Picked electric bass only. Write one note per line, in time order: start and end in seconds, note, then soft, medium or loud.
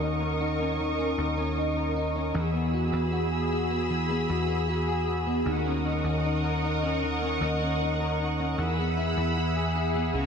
0.00 1.14 D#2 medium
1.18 2.31 D#2 medium
2.35 2.90 E2 medium
2.93 4.25 E2 medium
4.30 5.42 E2 medium
5.46 6.02 D#2 medium
6.04 7.37 D#2 medium
7.41 8.54 D#2 medium
8.58 9.14 E2 medium
9.17 10.10 E2 medium
10.14 10.26 C#2 medium